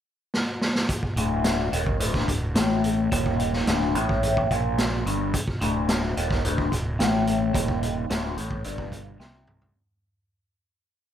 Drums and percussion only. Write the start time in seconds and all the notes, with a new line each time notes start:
0.34 snare
0.61 snare
0.75 snare
0.89 kick, closed hi-hat
1.03 kick
1.17 closed hi-hat
1.44 snare, closed hi-hat
1.73 closed hi-hat
1.86 kick
2.00 closed hi-hat
2.14 kick, snare
2.28 kick, closed hi-hat
2.55 snare, closed hi-hat
2.84 closed hi-hat
3.12 kick, closed hi-hat
3.26 kick
3.40 closed hi-hat
3.53 snare
3.67 snare, closed hi-hat
3.95 closed hi-hat
4.09 kick
4.23 closed hi-hat
4.37 kick
4.51 kick, closed hi-hat
4.78 snare, closed hi-hat
5.07 closed hi-hat
5.34 kick, closed hi-hat
5.48 kick
5.61 closed hi-hat
5.89 snare, closed hi-hat
6.17 closed hi-hat
6.31 kick, snare
6.45 closed hi-hat
6.58 kick
6.72 kick, closed hi-hat
7.00 snare, closed hi-hat
7.27 closed hi-hat
7.55 kick, closed hi-hat
7.68 kick
7.83 closed hi-hat
8.10 snare, closed hi-hat
8.38 closed hi-hat
8.51 kick
8.64 closed hi-hat
8.78 kick
8.92 kick, closed hi-hat
9.20 snare
9.47 mid tom
9.62 floor tom